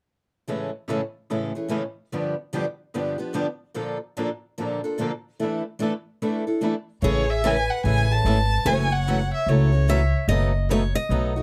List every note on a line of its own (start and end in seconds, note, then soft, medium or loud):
0.48 0.69 A2 soft
0.48 0.69 C#3 soft
0.48 0.69 E3 soft
0.48 0.70 G#3 soft
0.48 0.69 A3 medium
0.48 0.70 C#4 soft
0.48 0.70 E4 soft
0.48 0.70 G#4 medium
0.48 0.70 A4 soft
0.89 1.00 A2 medium
0.89 1.00 C#3 medium
0.89 1.01 E3 medium
0.89 1.00 G#3 medium
0.89 1.01 A3 medium
0.89 1.01 C#4 medium
0.89 1.00 E4 medium
0.89 1.01 G#4 medium
0.89 1.00 A4 medium
1.30 1.51 A2 soft
1.30 1.52 C#3 soft
1.30 1.51 E3 soft
1.30 1.51 G#3 soft
1.30 1.52 A3 medium
1.30 1.52 C#4 medium
1.30 1.52 E4 soft
1.30 1.52 G#4 medium
1.30 1.51 A4 medium
1.55 1.68 E3 soft
1.55 1.68 A3 soft
1.55 1.69 C#4 soft
1.55 1.69 G#4 soft
1.68 1.81 A2 medium
1.68 1.81 C#3 medium
1.68 1.81 E3 medium
1.68 1.82 G#3 medium
1.68 1.81 A3 medium
1.68 1.81 C#4 medium
1.68 1.82 E4 medium
1.68 1.82 G#4 medium
1.68 1.82 A4 medium
2.12 2.34 G2 soft
2.12 2.34 D3 soft
2.12 2.33 F3 medium
2.12 2.33 B3 medium
2.12 2.34 D4 medium
2.12 2.34 G4 medium
2.53 2.64 G2 medium
2.53 2.64 D3 medium
2.53 2.64 F3 medium
2.53 2.64 B3 medium
2.53 2.64 D4 medium
2.53 2.65 G4 medium
2.94 3.15 G2 medium
2.94 3.16 D3 medium
2.94 3.16 F3 medium
2.94 3.16 B3 medium
2.94 3.16 D4 soft
2.94 3.16 G4 medium
3.18 3.33 F3 soft
3.18 3.33 B3 soft
3.18 3.33 D4 soft
3.18 3.33 G4 soft
3.33 3.45 G2 medium
3.33 3.45 D3 medium
3.33 3.45 F3 medium
3.33 3.46 B3 medium
3.33 3.46 D4 medium
3.33 3.46 G4 medium
3.74 3.96 A#2 medium
3.74 3.97 D3 soft
3.74 3.97 F3 medium
3.74 3.96 A#3 medium
3.74 3.97 D4 medium
3.74 3.97 A4 medium
4.17 4.28 A#2 medium
4.17 4.28 D3 medium
4.17 4.28 F3 medium
4.17 4.28 A#3 medium
4.17 4.28 D4 medium
4.17 4.28 A4 medium
4.58 4.79 A#2 soft
4.58 4.79 D3 medium
4.58 4.79 F3 medium
4.58 4.79 A#3 medium
4.58 4.79 D4 medium
4.58 4.79 A4 medium
4.84 4.97 F3 soft
4.84 4.98 A#3 soft
4.84 4.98 D4 soft
4.84 4.98 A4 soft
4.98 5.09 A#2 medium
4.98 5.10 D3 medium
4.98 5.10 F3 medium
4.98 5.10 A#3 medium
4.98 5.10 D4 medium
4.98 5.10 A4 medium
5.39 5.61 E3 medium
5.39 5.61 A3 soft
5.39 5.61 D4 medium
5.39 5.61 E4 medium
5.39 5.61 A4 medium
5.44 5.63 E4 medium
5.44 5.63 A4 medium
5.79 5.91 E3 medium
5.79 5.91 A3 medium
5.79 5.91 D4 medium
5.79 5.91 E4 medium
5.79 5.91 A4 medium
6.22 6.43 E3 medium
6.22 6.43 A3 soft
6.22 6.43 D4 medium
6.22 6.43 E4 medium
6.22 6.43 A4 medium
6.47 6.60 D4 soft
6.47 6.61 E4 soft
6.47 6.61 A4 soft
6.61 6.73 E3 medium
6.61 6.73 A3 medium
6.61 6.73 D4 medium
6.61 6.73 E4 medium
6.61 6.73 A4 medium
7.02 7.68 A1 medium
7.02 7.24 C#3 medium
7.02 7.24 E3 medium
7.02 7.25 G#3 medium
7.02 7.24 A3 medium
7.02 7.23 C#4 medium
7.02 7.25 E4 medium
7.02 7.24 G#4 medium
7.02 7.43 G#4 medium
7.02 7.25 A4 medium
7.02 7.32 C#5 medium
7.30 7.48 E5 medium
7.44 7.55 C#3 medium
7.44 7.55 E3 medium
7.44 7.56 G#3 medium
7.44 7.56 A3 medium
7.44 7.56 C#4 medium
7.44 7.56 E4 medium
7.44 7.56 G#4 medium
7.44 7.56 A4 medium
7.44 8.65 B4 medium
7.44 7.72 G#5 medium
7.70 7.85 F#5 medium
7.84 8.19 A1 medium
7.84 8.06 C#3 medium
7.84 8.06 E3 medium
7.84 8.06 G#3 medium
7.84 8.06 A3 medium
7.84 8.06 C#4 medium
7.84 8.06 E4 medium
7.84 8.06 G#4 medium
7.84 8.07 A4 medium
7.84 8.13 G#5 medium
8.11 8.26 A3 soft
8.11 8.25 C#4 soft
8.11 8.25 G#4 soft
8.11 8.68 A5 medium
8.24 8.59 G#1 medium
8.24 8.37 C#3 medium
8.24 8.37 E3 medium
8.24 8.36 G#3 medium
8.24 8.37 A3 medium
8.24 8.37 C#4 medium
8.24 8.37 E4 medium
8.24 8.38 G#4 medium
8.24 8.37 A4 medium
8.65 9.31 F#1 medium
8.65 8.87 C#3 medium
8.65 8.87 E3 medium
8.65 8.87 F#3 medium
8.65 8.87 A3 medium
8.65 8.87 C#4 medium
8.65 8.88 E4 medium
8.65 8.87 F#4 medium
8.65 8.88 A4 medium
8.65 9.89 C#5 medium
8.65 8.94 G#5 medium
8.93 9.33 F#5 medium
9.07 9.18 C#3 medium
9.07 9.19 E3 medium
9.07 9.18 F#3 medium
9.07 9.19 A3 medium
9.07 9.19 C#4 medium
9.07 9.18 E4 medium
9.07 9.19 F#4 medium
9.07 9.19 A4 medium
9.34 9.50 E5 medium
9.46 10.12 C#2 medium
9.46 9.69 C#3 medium
9.46 9.70 E3 medium
9.46 9.70 F#3 medium
9.46 9.70 A3 medium
9.46 9.70 C#4 medium
9.46 9.70 F#4 medium
9.46 10.14 C#5 medium
9.51 9.71 E4 medium
9.51 9.71 A4 medium
9.72 9.87 A3 soft
9.72 9.88 C#4 soft
9.72 9.87 F#4 medium
9.88 9.99 C#3 medium
9.88 10.00 E3 medium
9.88 10.00 F#3 medium
9.88 10.00 A3 medium
9.88 10.00 C#4 medium
9.88 10.00 E4 medium
9.88 10.00 F#4 medium
9.88 10.01 A4 medium
9.88 10.27 E5 medium
10.28 10.93 F#1 medium
10.28 10.51 B2 medium
10.28 10.51 F#3 medium
10.28 10.51 A3 medium
10.28 10.51 B3 medium
10.28 10.51 D#4 medium
10.28 10.51 F#4 medium
10.28 10.51 A4 medium
10.28 10.71 D#5 medium
10.70 10.81 B2 medium
10.70 10.82 F#3 medium
10.70 10.82 A3 medium
10.70 10.81 B3 medium
10.70 10.81 D#4 medium
10.70 10.82 F#4 medium
10.70 10.82 A4 medium
10.70 10.95 C#5 medium
10.95 11.43 D#5 medium
11.09 11.43 B1 medium
11.09 11.32 B2 medium
11.09 11.32 F#3 medium
11.09 11.32 A3 medium
11.09 11.32 B3 medium
11.09 11.33 D#4 medium
11.09 11.33 F#4 medium
11.09 11.32 A4 medium
11.36 11.43 A3 soft
11.36 11.43 D#4 soft
11.36 11.43 F#4 medium